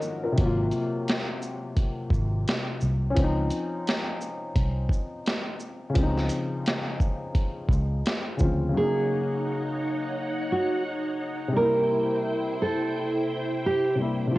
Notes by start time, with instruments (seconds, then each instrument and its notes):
Already playing: felt piano D#3 F3 F#3 C#4 F4 A#4 C#5 D#5 F#5
0.02 shaker
0.23 felt piano F4 A#4
0.32 felt piano C3
0.36 fingered electric bass G#1, felt piano F#3, kick, closed hi-hat
0.41 felt piano A#3
0.45 felt piano F4
0.71 closed hi-hat, shaker
1.08 snare, closed hi-hat
1.42 shaker
1.77 kick, closed hi-hat
2.10 fingered electric bass G#1, kick, shaker
2.48 snare, closed hi-hat
2.81 fingered electric bass C2, shaker
3.10 felt piano C#4
3.15 fingered electric bass C#2, felt piano F3, kick, closed hi-hat
3.19 felt piano C4
3.24 felt piano D#4
3.50 closed hi-hat, shaker
3.87 snare, closed hi-hat
4.21 shaker
4.56 fingered electric bass C2, kick, closed hi-hat
4.89 kick, shaker
5.26 snare, closed hi-hat
5.60 shaker
5.90 felt piano C#3
5.94 fingered electric bass C#2, felt piano F3, kick, closed hi-hat
5.98 felt piano C4
6.03 felt piano D#4
6.17 snare
6.29 closed hi-hat, shaker
6.66 snare, closed hi-hat
7.00 kick, shaker
7.35 kick, closed hi-hat
7.68 fingered electric bass C#2, kick, shaker
8.06 snare, closed hi-hat
8.37 fingered electric bass D2, felt piano C#3 F3, kick, shaker
8.41 felt piano C4 F4
8.69 felt piano C#3
8.74 felt piano F#3, string machine D#4 C#5 F#5, nylon-string guitar G#4
8.78 felt piano A#3
8.83 felt piano D#4
10.52 nylon-string guitar F#4
11.48 felt piano C3
11.53 felt piano G3, string machine E4 C5 G5, nylon-string guitar A#4
11.57 felt piano A#3
11.62 felt piano E4
12.62 nylon-string guitar A4
13.66 nylon-string guitar G4
13.95 felt piano C3 G3
14.00 felt piano A#3 E4
14.27 felt piano C3
14.32 felt piano F3, string machine F4 D#5 G#5